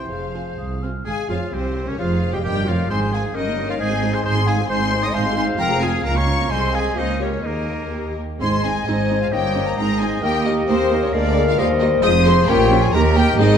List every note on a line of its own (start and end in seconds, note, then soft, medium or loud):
0.00 0.11 E4 soft
0.00 0.83 C5 soft
0.00 0.28 C6 soft
0.08 0.50 F1 soft
0.08 0.50 F2 soft
0.08 0.81 F3 soft
0.08 0.82 G#4 soft
0.08 0.83 G#4 soft
0.08 0.82 F5 medium
0.34 0.42 C4 soft
0.34 0.42 F4 soft
0.34 0.42 G#4 soft
0.34 0.42 C5 soft
0.57 0.98 C2 soft
0.57 0.99 C2 soft
0.57 0.84 D#6 soft
0.83 0.91 C4 soft
0.83 0.91 F4 soft
0.83 0.90 G#4 soft
0.83 0.90 C5 soft
0.83 1.06 F6 soft
1.06 1.15 G#1 medium
1.06 1.14 G#2 medium
1.06 1.30 G#3 medium
1.06 1.28 G#4 medium
1.06 1.54 G#4 medium
1.06 1.29 G#4 medium
1.06 1.28 F5 medium
1.06 1.14 G#5 medium
1.06 1.29 G#5 medium
1.29 1.38 F1 medium
1.29 1.37 F2 medium
1.29 1.54 F3 medium
1.29 1.55 F4 medium
1.29 1.53 F4 medium
1.29 1.53 C#5 medium
1.29 1.37 F5 medium
1.29 1.53 F5 medium
1.52 1.86 C2 medium
1.52 1.87 C2 medium
1.52 1.87 C3 medium
1.52 1.87 C4 medium
1.52 1.90 C4 medium
1.52 1.98 G4 medium
1.52 1.87 G4 medium
1.52 1.86 C5 medium
1.52 1.87 C5 medium
1.87 1.98 C#2 medium
1.87 1.93 C#3 medium
1.87 1.99 C#4 medium
1.87 1.98 C#4 medium
1.87 1.99 A#4 medium
1.87 1.99 C#5 medium
1.87 2.00 C#5 medium
1.98 2.32 F1 medium
1.98 2.32 F2 medium
1.98 2.33 F3 medium
1.98 2.33 F4 medium
1.98 2.44 G#4 medium
1.98 2.35 C5 medium
1.98 2.33 F5 medium
2.33 2.43 G2 medium
2.33 2.44 G3 medium
2.33 2.38 G4 medium
2.33 2.43 G4 medium
2.33 2.44 D#5 medium
2.33 2.43 G5 medium
2.33 2.44 G5 medium
2.44 2.67 G1 medium
2.44 2.66 G2 medium
2.44 2.67 G3 medium
2.44 2.69 G4 medium
2.44 2.67 G4 medium
2.44 2.90 A#4 medium
2.44 2.67 D#5 medium
2.44 2.53 G5 medium
2.44 2.67 G5 loud
2.67 2.90 F1 medium
2.67 2.89 F2 medium
2.67 2.78 F3 medium
2.67 2.90 F4 medium
2.67 2.89 C#5 medium
2.67 2.90 F5 medium
2.89 3.29 G#1 medium
2.89 3.29 G#2 medium
2.89 3.00 D#3 medium
2.89 3.32 G#3 medium
2.89 3.00 C4 medium
2.89 4.66 D#4 medium
2.89 3.36 G#4 medium
2.89 3.12 C5 medium
2.89 3.15 G#5 medium
2.89 2.98 C6 medium
2.89 3.12 C6 medium
3.02 3.13 G#3 medium
3.02 3.13 D#4 medium
3.13 3.24 D#3 medium
3.13 3.24 C4 medium
3.13 3.37 G#4 medium
3.13 3.36 F5 medium
3.13 3.35 G#5 medium
3.13 3.22 G#5 medium
3.24 3.35 G#3 medium
3.24 3.35 D#4 medium
3.34 3.74 G1 medium
3.34 3.74 G2 medium
3.34 3.46 G3 medium
3.34 3.80 C#4 medium
3.34 3.46 C#4 medium
3.34 3.69 D#4 medium
3.34 3.79 A#4 medium
3.34 3.71 A#4 medium
3.34 3.68 D#5 medium
3.47 3.58 A#3 medium
3.47 3.58 D#4 medium
3.58 3.69 G3 medium
3.58 3.69 C#4 medium
3.68 3.80 A#3 medium
3.68 3.79 D#4 medium
3.68 3.75 F4 medium
3.68 3.82 C#5 medium
3.68 3.80 F5 medium
3.68 3.74 F5 medium
3.80 4.20 G#1 medium
3.80 4.19 G#2 medium
3.80 3.90 G#3 medium
3.80 4.68 C4 medium
3.80 3.90 D#4 medium
3.80 4.16 G#4 medium
3.80 4.25 C5 medium
3.80 4.13 D#5 medium
3.80 4.13 G#5 loud
3.80 4.14 G#5 medium
3.91 4.02 C4 medium
3.91 4.02 G#4 medium
4.02 4.13 G#3 medium
4.02 4.13 D#4 medium
4.14 4.25 C4 medium
4.14 4.25 G#4 medium
4.14 4.25 C5 medium
4.14 4.24 G#5 medium
4.14 4.24 C6 medium
4.14 4.19 C6 medium
4.24 4.64 G#1 medium
4.24 4.64 G#2 medium
4.24 4.35 G#3 medium
4.24 4.35 D#4 medium
4.24 4.69 G#4 medium
4.24 4.35 C5 loud
4.24 4.48 G#5 loud
4.24 4.47 C6 loud
4.37 4.48 C4 medium
4.37 4.48 G#4 medium
4.47 4.58 G#3 medium
4.47 4.58 D#4 medium
4.47 4.57 G#4 medium
4.47 4.69 F5 medium
4.47 4.70 G#5 medium
4.47 4.70 G#5 loud
4.59 4.70 C4 medium
4.59 4.70 G#4 medium
4.68 5.09 G#1 medium
4.68 5.08 G#2 medium
4.68 4.80 G#3 medium
4.68 5.11 C4 medium
4.68 5.11 D#4 medium
4.68 4.80 D#4 medium
4.68 5.15 C5 loud
4.68 5.05 C5 loud
4.68 5.02 G#5 loud
4.68 5.02 C6 loud
4.68 5.03 C6 loud
4.81 4.92 C4 medium
4.81 4.92 G#4 medium
4.92 5.03 G#3 medium
4.92 5.03 D#4 medium
5.03 5.14 C4 medium
5.03 5.14 G#4 medium
5.03 5.14 D#5 medium
5.03 5.16 C6 medium
5.03 5.07 D#6 medium
5.03 5.15 D#6 loud
5.13 5.54 G#1 medium
5.13 5.53 G#2 medium
5.13 5.25 G#3 medium
5.13 5.56 C4 medium
5.13 5.58 D#4 medium
5.13 5.25 D#4 medium
5.13 5.37 C5 loud
5.13 6.52 F5 loud
5.13 5.36 G#5 medium
5.13 5.35 C6 loud
5.13 5.36 C6 loud
5.25 5.37 C4 medium
5.25 5.37 G#4 medium
5.36 5.48 G#3 medium
5.36 5.48 D#4 medium
5.36 5.59 C5 loud
5.36 5.43 G#5 medium
5.36 5.44 C6 medium
5.36 5.45 C6 loud
5.47 5.59 C4 medium
5.47 5.59 G#4 medium
5.57 5.99 F1 medium
5.57 5.99 F2 medium
5.57 5.69 G#3 medium
5.57 6.03 C4 medium
5.57 6.02 F4 medium
5.57 5.69 F4 medium
5.57 5.85 A#4 loud
5.57 5.81 G5 loud
5.57 5.80 A#5 loud
5.57 5.81 A#5 loud
5.69 5.81 C4 medium
5.69 5.81 G#4 medium
5.81 5.93 G#3 medium
5.81 5.93 F4 medium
5.81 6.05 G#4 loud
5.81 6.04 F5 medium
5.81 5.89 G#5 loud
5.81 6.05 G#5 loud
5.92 6.04 C4 medium
5.92 6.04 G#4 medium
6.03 6.45 C#2 medium
6.03 6.50 A#3 medium
6.03 6.15 C#4 medium
6.03 6.48 F4 medium
6.03 6.15 F4 medium
6.03 6.19 A#4 medium
6.03 6.15 F5 medium
6.03 6.15 A#5 medium
6.03 6.16 A#5 loud
6.15 6.27 A#3 medium
6.15 6.26 C#4 medium
6.15 6.53 C#5 medium
6.15 6.52 A#5 medium
6.15 6.50 C#6 loud
6.27 6.38 C#4 medium
6.27 6.39 F4 medium
6.39 6.50 A#3 medium
6.39 6.50 C#4 medium
6.49 6.93 C2 medium
6.49 6.96 G#3 medium
6.49 6.93 C4 medium
6.49 6.96 G#4 medium
6.49 6.93 G#4 medium
6.49 6.76 C5 loud
6.49 6.98 D#5 medium
6.49 6.73 G#5 medium
6.49 6.72 C6 medium
6.49 6.73 C6 loud
6.72 7.00 G#4 medium
6.72 6.80 F5 medium
6.72 6.95 G#5 medium
6.72 6.97 G#5 medium
6.94 7.44 C#2 medium
6.94 7.42 A#3 medium
6.94 7.43 A#3 medium
6.94 7.21 D#4 medium
6.94 7.43 F4 medium
6.94 7.20 F4 medium
6.94 7.21 C5 medium
6.94 7.19 D#5 medium
6.94 7.20 D#5 loud
6.94 7.29 F5 medium
7.20 7.48 C#4 medium
7.20 7.28 G4 medium
7.20 7.46 A#4 medium
7.20 7.43 C#5 medium
7.20 7.45 C#5 medium
7.43 8.18 D#2 medium
7.43 8.19 D#2 medium
7.43 7.91 A#3 medium
7.43 7.92 A#3 medium
7.43 8.18 A#3 medium
7.43 8.17 D#4 medium
7.43 7.92 G#4 medium
7.43 8.17 A#4 medium
7.43 8.16 A#4 medium
7.43 8.15 D#5 medium
7.92 8.03 A#3 medium
7.92 8.20 A#3 medium
7.92 8.16 G4 medium
7.92 8.20 G4 medium
8.39 8.82 G#1 medium
8.39 8.81 G#2 medium
8.39 9.34 G#3 medium
8.39 8.49 C4 medium
8.39 8.49 D#4 medium
8.39 8.83 G#4 medium
8.39 8.62 C5 medium
8.39 9.33 D#5 medium
8.39 9.34 G#5 medium
8.39 8.65 C6 loud
8.39 8.63 C6 loud
8.64 8.72 C4 medium
8.64 8.72 D#4 medium
8.64 8.87 G#4 medium
8.64 8.88 G#5 medium
8.64 8.88 G#5 loud
8.86 9.28 G#1 medium
8.86 9.27 G#2 medium
8.86 8.95 C4 medium
8.86 9.21 D#4 medium
8.86 8.95 D#4 medium
8.86 9.76 C5 loud
8.86 9.20 D#5 medium
8.86 9.22 D#5 loud
9.10 9.18 C4 medium
9.10 9.18 D#4 medium
9.21 9.26 F4 medium
9.21 9.26 F5 medium
9.32 9.73 G1 medium
9.32 9.73 G2 medium
9.32 9.80 A#3 medium
9.32 9.40 C#4 medium
9.32 9.41 D#4 medium
9.32 9.66 G4 medium
9.32 9.76 C#5 medium
9.32 11.15 D#5 medium
9.32 9.68 G5 medium
9.32 9.66 G5 loud
9.56 9.64 C#4 medium
9.56 9.64 D#4 medium
9.66 9.76 A#4 medium
9.66 9.76 A#5 medium
9.66 9.77 A#5 medium
9.76 10.18 G#1 medium
9.76 10.18 G#2 medium
9.76 10.22 G#3 medium
9.76 9.87 C4 medium
9.76 10.22 D#4 medium
9.76 9.87 D#4 medium
9.76 10.00 A#4 loud
9.76 10.24 C5 medium
9.76 9.83 A#5 loud
9.76 10.01 A#5 loud
10.00 10.09 C4 medium
10.00 10.09 D#4 medium
10.00 10.09 G#4 medium
10.00 10.23 G#5 medium
10.00 10.07 G#5 medium
10.22 10.63 D#2 medium
10.22 11.15 A#3 medium
10.22 10.32 A#3 medium
10.22 10.31 D#4 medium
10.22 11.13 G4 loud
10.22 10.46 G4 loud
10.22 12.04 A#4 medium
10.22 10.47 G5 loud
10.22 10.46 G5 loud
10.45 10.55 A#3 medium
10.45 10.68 D#4 loud
10.45 10.55 D#4 medium
10.45 10.53 D#5 medium
10.45 10.67 D#5 medium
10.67 11.09 D#2 medium
10.67 10.77 A#3 medium
10.67 11.01 C4 medium
10.67 10.77 D#4 medium
10.67 11.01 C5 loud
10.67 11.02 C5 loud
10.92 11.00 A#3 medium
10.92 11.00 D#4 medium
11.02 11.06 C#4 medium
11.02 11.08 C#5 medium
11.02 11.14 C#5 medium
11.13 11.53 D2 medium
11.13 11.53 D2 loud
11.13 11.61 G#3 medium
11.13 11.22 A#3 medium
11.13 11.47 D4 loud
11.13 11.23 G#4 medium
11.13 11.58 A#4 loud
11.13 11.46 D5 loud
11.13 11.48 D5 loud
11.13 11.60 F5 medium
11.37 11.45 A#3 medium
11.37 11.45 G#4 medium
11.47 11.56 F4 medium
11.47 11.57 F5 medium
11.47 11.57 F5 loud
11.57 11.98 D#2 loud
11.57 11.98 D#2 medium
11.57 12.05 G3 medium
11.57 11.67 A#3 medium
11.57 11.65 F4 loud
11.57 11.67 G4 medium
11.57 12.49 C5 loud
11.57 12.02 D#5 medium
11.57 11.64 F5 loud
11.57 11.67 F5 loud
11.80 11.89 A#3 medium
11.80 11.88 D#4 medium
11.80 11.89 G4 medium
11.80 11.86 D#5 medium
11.80 11.88 D#5 medium
12.02 12.43 F1 loud
12.02 12.43 F2 loud
12.02 12.93 F3 medium
12.02 12.12 G#3 medium
12.02 12.12 F4 medium
12.02 12.50 G#4 loud
12.02 12.47 C5 loud
12.02 12.10 D#5 loud
12.02 12.09 D#6 loud
12.02 12.26 D#6 loud
12.25 12.34 G#3 medium
12.25 12.34 F4 medium
12.25 12.33 C5 loud
12.25 12.48 C6 loud
12.25 12.50 C6 loud
12.48 12.88 A#1 loud
12.48 12.88 A#2 loud
12.48 12.56 C#4 medium
12.48 12.56 F4 medium
12.48 12.93 F4 loud
12.48 12.81 G4 loud
12.48 12.93 A#4 loud
12.48 12.96 C#5 loud
12.48 12.82 G5 loud
12.48 12.84 G5 loud
12.71 12.79 C#4 medium
12.71 12.79 F4 medium
12.82 12.94 G#4 loud
12.82 12.93 G#5 loud
12.82 12.94 G#5 loud
12.92 13.33 D#2 loud
12.92 13.58 D#3 loud
12.92 13.02 A#3 medium
12.92 13.40 G4 medium
12.92 13.02 G4 medium
12.92 13.40 G4 loud
12.92 13.16 A#4 loud
12.92 13.38 A#4 loud
12.92 13.00 A#5 loud
12.92 13.18 A#5 loud
13.15 13.24 A#3 medium
13.15 13.24 G4 medium
13.15 13.39 G4 loud
13.15 13.38 G5 loud
13.15 13.39 G5 loud
13.38 13.58 G#1 loud
13.38 13.58 G#2 loud
13.38 13.48 C4 medium
13.38 13.58 D#4 loud
13.38 13.58 G#4 medium
13.38 13.48 G#4 medium
13.38 13.58 G#4 loud
13.38 13.58 C5 medium
13.38 13.58 D#5 loud